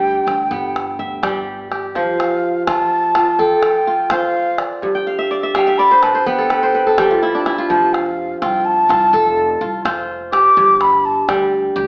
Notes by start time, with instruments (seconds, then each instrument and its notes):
Already playing: upright bass D2, kora G2 G3 F4 B4, flute G5
0.27 upright bass D2, calabash click
0.40 calabash click
0.51 upright bass G1, kora B3, calabash thump, calabash click
0.76 calabash click
0.99 upright bass D2, kora E5, calabash click
1.23 upright bass G1, kora G3 G4, calabash thump, calabash click
1.36 calabash click
1.71 kora G4, calabash click
1.95 kora F3, flute F5, calabash thump
2.20 calabash click
2.31 calabash click
2.67 kora F4, flute A5, calabash thump, calabash click
3.15 kora F4, calabash click
3.39 kora A4, flute G5, calabash thump
3.63 calabash click
3.74 calabash click
3.87 kora F4
4.10 kora F4 C5, flute F5, calabash thump, calabash click
4.58 flute D5, calabash click
4.82 kora G2, calabash thump
4.95 kora G5
5.07 kora F5
5.19 kora E5, calabash click
5.31 kora D5
5.43 kora E5
5.54 kora G3 F5, flute G5, calabash thump, calabash click
5.67 kora E5
5.78 kora D5, flute B5
5.91 kora C5
6.02 kora B4, flute A5, calabash click
6.15 kora C5
6.26 kora B3 B4, flute G5, calabash thump
6.38 kora A4
6.50 kora B4, calabash click
6.62 kora C5, calabash click
6.75 kora B4
6.87 kora A4
6.98 kora G3 G4, calabash thump, calabash click
7.11 kora F4
7.23 kora E4
7.35 kora D4
7.46 kora E4, calabash click
7.58 kora F4
7.68 upright bass F1, kora F3, flute A5, calabash thump
7.93 flute F5, calabash click
8.06 calabash click
8.41 upright bass C2, kora F4, flute G5, calabash thump, calabash click
8.65 flute A5
8.89 upright bass C2, kora F4, calabash click
9.13 upright bass F1, kora A4, calabash thump
9.50 calabash click
9.61 upright bass C2, kora F4
9.85 upright bass F1, kora F4 C5, calabash thump, calabash click
10.32 kora G4, flute D6, calabash click
10.57 upright bass G1, kora G2, calabash thump, calabash click
10.81 flute B5, calabash click
10.93 calabash click
11.05 flute A5
11.28 upright bass D2, kora G3, flute G5, calabash thump, calabash click
11.76 upright bass D2, kora G4